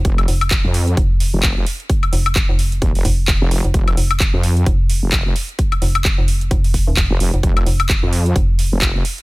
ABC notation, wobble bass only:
X:1
M:4/4
L:1/16
Q:"Swing 16ths" 1/4=130
K:Ebmix
V:1 name="Wobble bass" clef=bass
F,,,2 z3 F,,3 z3 F,,,2 F,,, z2 | z8 E,,, F,,, z3 F,,,2 z | F,,,2 z3 F,,3 z3 F,,,2 F,,, z2 | z12 z F,,, F,,, z |
F,,,2 z3 F,,3 z3 F,,,2 F,,, z2 |]